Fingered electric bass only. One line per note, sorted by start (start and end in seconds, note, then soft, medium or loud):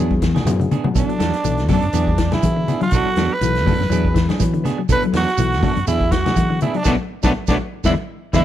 0.00 0.37 E2 loud
0.45 0.66 F#2 loud
0.95 1.06 B1 loud
1.20 1.31 E2 medium
1.44 1.69 B1 medium
1.69 1.80 F#2 loud
1.83 1.92 F#2 medium
1.93 2.33 E2 medium
2.43 2.63 E3 loud
2.92 3.03 B1 loud
3.16 3.27 E2 medium
3.41 3.66 B1 loud
3.66 3.77 F#2 medium
3.79 3.88 F#2 medium
3.90 4.30 E2 medium
4.40 4.60 E3 loud
4.89 5.00 B1 loud
5.13 5.24 E2 medium
5.38 5.62 B1 medium
5.62 5.73 F#2 medium
5.77 5.86 F#2 medium
5.88 6.27 E2 medium
6.36 6.56 E3 loud
6.85 6.95 B1 medium
7.24 7.32 B1 medium
7.48 7.56 B1 loud
7.84 7.94 E2 medium
8.33 8.43 E2 loud